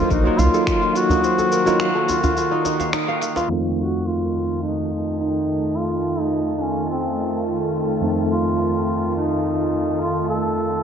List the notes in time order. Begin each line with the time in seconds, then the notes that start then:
Already playing: D#3 F#3 A#3 D#4 F4 A4 C5
0.10 A#1 D#4 A#4, kick, djembe tone, shaker
0.23 F#3 A#3 D#4 F4
0.38 C2 F4 F5, djembe slap, djembe bass, shaker
0.54 A4, shaker
0.67 F4, finger snap, kick, shaker
0.82 F4
0.95 F4 F#4, shaker
1.09 D#4, djembe tone, djembe bass, shaker
1.24 C5, shaker
1.38 A4, djembe tone, shaker
1.52 A#4, shaker
1.65 F#3 A#3 D#4 F4, djembe slap, djembe tone, shaker
1.80 F5, finger snap, shaker
1.95 A4
2.09 F4, djembe tone, shaker
2.23 F4, djembe bass, shaker
2.37 F4, shaker
2.51 D#4
2.65 D#4, djembe slap, shaker
2.80 F5, djembe slap, shaker
2.93 D#4, finger snap, shaker
3.08 F5
3.22 F5, shaker
3.36 F4, djembe slap, shaker
3.48 F2 D#3 A3 C4 D#4 F4 A5
3.79 F#4, shaker
3.94 shaker
4.06 F4, shaker
4.35 shaker
4.50 shaker
4.63 D#4, shaker
4.92 shaker
5.07 shaker
5.19 D#4, shaker
5.49 shaker
5.64 shaker
5.76 F4, shaker
5.92 shaker
6.05 shaker
6.20 D#4, shaker
6.33 shaker
6.61 C#4, shaker
6.77 shaker
6.90 C4, shaker
7.19 shaker
7.33 shaker
7.47 shaker
7.75 shaker
7.89 shaker
8.00 F2 A3 C4 D#4, shaker
8.18 shaker
8.31 F4, shaker
8.46 shaker
8.60 shaker
8.88 shaker
9.03 shaker
9.16 D#4, shaker
9.45 shaker
9.60 shaker
9.73 shaker
10.01 F4, shaker
10.16 shaker
10.29 A4, shaker
10.44 shaker
10.58 shaker
10.72 shaker